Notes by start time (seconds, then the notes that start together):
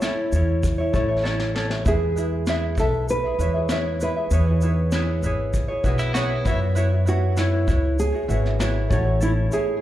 Already playing: A3 E4 C5 C#5
0.01 C#4 E4 A4 C#5, snare, shaker
0.32 E2 C#4 E4 A4 C#5, shaker
0.63 kick, shaker
0.78 C#4 E4 C#5
0.93 A1 A3 C#4 E4 A4 C#5, kick, shaker
1.09 C#4 E4 C#5
1.23 C#4 E4 A4 C#5, snare
1.40 snare
1.55 C#4 E4 A4 C#5, snare
1.70 C#4 E4 C#5, snare
1.85 E2 G#3 E4 G#4 B4 E5, kick, shaker
2.16 G#3 E4 G#4 B4 E5, shaker
2.47 E4 G#4 B4 E5, snare, shaker
2.77 B1 E4 A4 B4 E5, kick, shaker
3.09 B4, shaker
3.24 E4 G#4 E5
3.38 E2 G#3 E4 G#4 B4 C#5, shaker
3.43 E5
3.54 E4 G#4 E5
3.69 E4 G#4 B4 C#5 E5, snare, shaker
4.01 E4 G#4 B4 E5, shaker
4.16 E4 G#4 E5
4.30 E2 B3 E4 G#4 B4 C#5, shaker
4.34 C#5
4.47 E4 G#4 C#5
4.61 B3 D#4 E4 G#4 B4 C#5, shaker
4.66 E4 C#5
4.92 E4 G#4 B4 C#5, snare, shaker
5.22 G#1 E4 G#4 B4, shaker
5.27 C#5
5.54 kick, shaker
5.68 E4 G#4 C#5
5.83 B1 B3 E4 F#4 G#4 B4, kick, shaker
5.87 C#5
5.99 E4, snare, shaker
6.14 E4 F#4 G#4 B4 C#5, snare, shaker
6.30 E4
6.45 F#2 B3 E4 F#4 B4 C#5 E5, kick, shaker
6.59 E4 F#4 C#5
6.75 E4 F#4 B4 C#5, shaker
6.90 E4 C#5
7.05 B3 E4 F#4 B4 C#5 E5, shaker
7.36 E4 F#4 B4 C#5, snare, shaker
7.67 C#2 E4 F#4 B4 C#5, kick, shaker
7.99 G#4, shaker
8.12 E4 F#4 C#5
8.28 G#1 B3 E4 F#4 B4 C#5 E5, shaker
8.44 E4 F#4 C#5, snare
8.59 E4 F#4 B4 C#5, snare, shaker
8.88 A1 A3 C#4 E4 F#4 A4 C#5, kick, shaker
8.93 C#5
9.05 C#4 E4 C#5
9.20 C#4 E4 A4 C#5, shaker
9.49 A3 C#4 E4 G#4 C#5, shaker
9.54 C#5